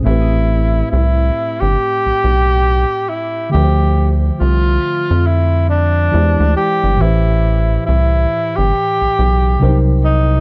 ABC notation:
X:1
M:4/4
L:1/16
Q:"Swing 16ths" 1/4=69
K:Am
V:1 name="Tenor saxophone"
E4 E3 G6- G E2 | G3 z F4 E2 D4 G2 | E4 E3 G6 z _E2 |]
V:2 name="Tine electric piano"
[A,,A,CGB]16 | [D,F,A,Bce]12 [E,^G,E=G^Bd]4 | [A,,E,GBc]12 [C,_G,D_E_Bc]4 |]
V:3 name="Analog synth bass" clef=bass
A,,,4 C,,2 z G,,, z B,,, B,,,3 z3 | D,,4 C,,2 z F,,4- F,, E,, D,, z G,,, | A,,,4 C,,2 z G,,, z B,,, B,,,2 C,,4 |]